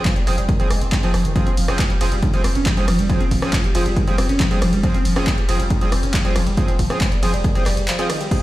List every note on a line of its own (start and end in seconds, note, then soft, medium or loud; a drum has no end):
0.05 0.11 F3 medium
0.05 kick loud
0.05 clap loud
0.05 closed hi-hat medium
0.16 0.26 F1 medium
0.16 0.22 G3 medium
0.16 closed hi-hat medium
0.27 0.37 F1 loud
0.27 0.36 F3 medium
0.27 0.33 F3 medium
0.27 0.36 C4 medium
0.27 0.36 G#4 loud
0.27 open hi-hat loud
0.38 0.49 F1 medium
0.38 0.44 G3 medium
0.38 closed hi-hat medium
0.49 0.55 D#3 medium
0.49 kick loud
0.49 closed hi-hat loud
0.60 0.70 F1 medium
0.60 0.68 F3 medium
0.60 0.63 G3 medium
0.60 0.68 C4 medium
0.60 0.68 G#4 medium
0.60 closed hi-hat medium
0.70 0.81 F1 loud
0.70 0.80 G#3 medium
0.70 cross-stick medium
0.70 open hi-hat loud
0.81 0.92 F1 medium
0.81 0.87 C4 medium
0.81 closed hi-hat medium
0.92 0.96 F4 loud
0.92 kick loud
0.92 clap loud
0.92 closed hi-hat loud
1.03 1.13 F1 medium
1.03 1.09 F3 medium
1.03 1.12 F3 loud
1.03 1.12 C4 medium
1.03 1.12 G#4 loud
1.03 closed hi-hat medium
1.14 1.24 F1 loud
1.14 1.23 F3 medium
1.14 cross-stick medium
1.14 open hi-hat loud
1.25 1.35 F1 medium
1.25 1.31 D#3 medium
1.25 closed hi-hat medium
1.36 1.45 F3 medium
1.36 1.50 F3 medium
1.36 1.50 C4 medium
1.36 1.50 G#4 medium
1.36 kick loud
1.36 closed hi-hat medium
1.47 1.57 F1 medium
1.47 1.53 C4 loud
1.47 closed hi-hat soft
1.57 1.68 F1 loud
1.57 1.64 F3 medium
1.57 open hi-hat loud
1.57 ride medium
1.68 1.79 F1 medium
1.68 1.77 F3 loud
1.68 1.77 C4 medium
1.68 1.74 C#4 medium
1.68 1.77 G#4 loud
1.68 cross-stick loud
1.68 closed hi-hat medium
1.79 1.85 F3 medium
1.79 kick loud
1.79 clap loud
1.79 closed hi-hat medium
1.90 2.00 F1 medium
1.90 1.96 G3 medium
1.90 closed hi-hat medium
2.01 2.11 F1 loud
2.01 2.07 F3 medium
2.01 2.10 F3 medium
2.01 2.10 C4 medium
2.01 2.10 G#4 loud
2.01 open hi-hat loud
2.01 ride medium
2.12 2.22 F1 medium
2.12 2.18 G3 medium
2.12 closed hi-hat medium
2.23 2.29 D#3 medium
2.23 kick loud
2.23 closed hi-hat medium
2.34 2.44 F1 medium
2.34 2.42 F3 medium
2.34 2.37 G3 medium
2.34 2.42 C4 medium
2.34 2.42 G#4 medium
2.34 closed hi-hat medium
2.44 2.55 F1 loud
2.44 2.54 C4 medium
2.44 cross-stick loud
2.44 open hi-hat loud
2.44 ride medium
2.55 2.66 F1 medium
2.55 2.61 C#4 medium
2.55 closed hi-hat medium
2.66 2.70 F3 loud
2.66 kick loud
2.66 clap loud
2.66 closed hi-hat medium
2.77 2.87 F1 medium
2.77 2.86 F3 medium
2.77 2.83 G3 medium
2.77 2.86 C4 medium
2.77 2.86 G#4 loud
2.77 closed hi-hat medium
2.88 2.98 F1 loud
2.88 2.94 F3 medium
2.88 cross-stick medium
2.88 open hi-hat loud
2.88 ride medium
2.99 3.09 F1 medium
2.99 3.05 G3 medium
2.99 closed hi-hat medium
3.10 3.19 F3 medium
3.10 3.23 F3 medium
3.10 3.23 C4 medium
3.10 3.23 G#4 medium
3.10 kick loud
3.10 closed hi-hat medium
3.21 3.31 F1 medium
3.21 3.27 C4 loud
3.21 closed hi-hat medium
3.31 3.42 F1 loud
3.31 3.37 F3 medium
3.31 kick medium
3.31 open hi-hat loud
3.31 ride medium
3.42 3.53 F1 medium
3.42 3.51 F3 loud
3.42 3.51 C4 medium
3.42 3.48 C#4 medium
3.42 3.51 G#4 loud
3.42 cross-stick loud
3.42 closed hi-hat medium
3.53 3.59 F3 medium
3.53 kick loud
3.53 clap loud
3.53 closed hi-hat medium
3.64 3.74 F1 medium
3.64 3.70 G3 medium
3.64 closed hi-hat soft
3.75 3.85 F1 loud
3.75 3.81 F3 medium
3.75 3.84 F3 medium
3.75 3.84 C4 medium
3.75 3.84 G#4 loud
3.75 open hi-hat loud
3.75 ride medium
3.86 3.96 F1 medium
3.86 3.92 G3 medium
3.86 closed hi-hat medium
3.96 4.03 D#3 medium
3.96 kick loud
3.96 closed hi-hat medium
4.07 4.18 F1 medium
4.07 4.16 F3 medium
4.07 4.11 G3 medium
4.07 4.16 C4 medium
4.07 4.16 G#4 medium
4.07 closed hi-hat medium
4.18 4.29 F1 loud
4.18 4.27 C4 medium
4.18 cross-stick loud
4.18 open hi-hat loud
4.18 ride medium
4.29 4.40 F1 medium
4.29 4.35 C#4 medium
4.29 closed hi-hat soft
4.40 4.44 F3 loud
4.40 kick loud
4.40 clap loud
4.40 closed hi-hat medium
4.51 4.61 F1 medium
4.51 4.60 F3 medium
4.51 4.57 G3 medium
4.51 4.60 C4 medium
4.51 4.60 G#4 loud
4.51 closed hi-hat soft
4.62 4.72 F1 loud
4.62 4.68 F3 medium
4.62 cross-stick medium
4.62 open hi-hat loud
4.62 ride medium
4.73 4.83 F1 medium
4.73 4.79 G3 medium
4.73 closed hi-hat medium
4.83 4.93 F3 medium
4.83 4.97 F3 medium
4.83 4.97 C4 medium
4.83 4.97 G#4 medium
4.83 kick loud
4.83 closed hi-hat medium
4.94 5.05 F1 medium
4.94 5.00 C4 loud
4.94 closed hi-hat medium
5.05 5.16 F1 loud
5.05 5.11 F3 medium
5.05 open hi-hat loud
5.05 ride medium
5.16 5.27 F1 medium
5.16 5.25 F3 medium
5.16 5.25 C4 medium
5.16 5.22 C#4 medium
5.16 5.25 G#4 loud
5.16 cross-stick loud
5.16 closed hi-hat medium
5.27 5.33 F3 medium
5.27 kick loud
5.27 clap loud
5.27 closed hi-hat medium
5.38 5.48 F1 medium
5.38 5.44 G3 medium
5.38 closed hi-hat medium
5.49 5.59 F1 loud
5.49 5.55 F3 medium
5.49 5.57 F3 medium
5.49 5.57 C4 medium
5.49 5.57 G#4 loud
5.49 open hi-hat loud
5.49 ride medium
5.60 5.70 F1 medium
5.60 5.66 G3 medium
5.60 closed hi-hat medium
5.70 5.77 D#3 medium
5.70 kick loud
5.70 closed hi-hat medium
5.81 5.92 F1 medium
5.81 5.90 F3 medium
5.81 5.85 G3 medium
5.81 5.90 C4 medium
5.81 5.90 G#4 loud
5.81 closed hi-hat medium
5.92 6.03 F1 loud
5.92 6.01 C4 medium
5.92 cross-stick loud
5.92 open hi-hat loud
5.92 ride medium
6.03 6.14 F1 medium
6.03 6.09 C#4 medium
6.03 closed hi-hat medium
6.14 6.18 F3 loud
6.14 kick loud
6.14 clap loud
6.14 closed hi-hat medium
6.25 6.35 F1 medium
6.25 6.33 F3 medium
6.25 6.31 G3 medium
6.25 6.33 C4 medium
6.25 6.33 G#4 loud
6.25 closed hi-hat medium
6.36 6.46 F1 loud
6.36 6.42 F3 medium
6.36 cross-stick medium
6.36 open hi-hat loud
6.36 ride medium
6.47 6.57 F1 medium
6.47 6.53 G3 medium
6.47 closed hi-hat medium
6.57 6.71 F3 medium
6.57 6.67 F3 medium
6.57 6.71 C4 medium
6.57 6.71 G#4 medium
6.57 kick loud
6.57 closed hi-hat loud
6.68 6.79 F1 medium
6.68 6.74 C4 loud
6.68 closed hi-hat medium
6.79 6.89 F1 loud
6.79 6.85 F3 medium
6.79 kick medium
6.79 open hi-hat loud
6.79 ride medium
6.90 7.01 F1 medium
6.90 6.99 F3 medium
6.90 6.99 C4 medium
6.90 6.96 C#4 medium
6.90 6.99 G#4 loud
6.90 cross-stick medium
6.90 closed hi-hat medium
7.01 7.07 F3 medium
7.01 kick loud
7.01 clap loud
7.01 closed hi-hat loud
7.12 7.22 F1 medium
7.12 7.18 G3 medium
7.12 closed hi-hat medium
7.23 7.33 F1 loud
7.23 7.31 F3 medium
7.23 7.29 F3 medium
7.23 7.31 C4 medium
7.23 7.31 G#4 loud
7.23 open hi-hat loud
7.23 ride medium
7.34 7.44 F1 medium
7.34 7.40 G3 medium
7.34 closed hi-hat medium
7.44 7.51 D#3 medium
7.44 kick loud
7.44 closed hi-hat loud
7.55 7.65 F1 medium
7.55 7.64 F3 medium
7.55 7.59 G3 medium
7.55 7.64 C4 medium
7.55 7.64 G#4 loud
7.55 closed hi-hat medium
7.66 7.76 F1 loud
7.66 7.72 G3 loud
7.66 cross-stick medium
7.66 clap soft
7.66 open hi-hat loud
7.66 ride medium
7.77 7.88 F1 medium
7.77 7.83 G3 medium
7.77 closed hi-hat medium
7.88 7.92 F3 medium
7.88 clap loud
7.88 closed hi-hat loud
7.99 8.07 F3 loud
7.99 8.07 C4 medium
7.99 8.05 F4 loud
7.99 8.07 G#4 loud
7.99 closed hi-hat medium
8.10 8.19 D#3 medium
8.10 cross-stick medium
8.10 open hi-hat loud
8.10 ride medium
8.21 8.27 G3 medium
8.21 closed hi-hat medium
8.31 8.43 F3 medium
8.31 8.41 F3 medium
8.31 8.43 C4 medium
8.31 8.43 G#4 medium
8.31 kick loud
8.31 closed hi-hat loud
8.31 crash medium